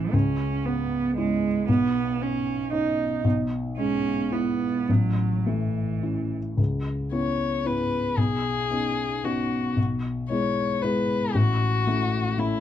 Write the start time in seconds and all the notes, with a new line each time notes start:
Already playing: A1 E3 A3 C#4 E4
0.13 C#2 C#4
0.65 B3
1.17 G#3 C#4 E4
1.68 B1 B3
2.20 B3 C#4
2.72 C#4 D#4
3.24 B1
3.78 G#3 C#4
4.32 B3 E4
4.89 A1 F#3
5.46 E3 A3
6.02 C#4 E4
6.57 C#2
7.11 B3 C#4 E4 C#5
7.65 B3 C#4 E4 B4
8.17 B1 G#4
8.70 B3 C#4 D#4
9.24 B3 C#4 D#4 F#4
9.76 B1
10.30 G#3 B3 E4 C#5
10.82 G#3 B3 E4 B4
11.34 A1 F#4
11.87 A3 C#4 E4
12.38 A3 C#4 E4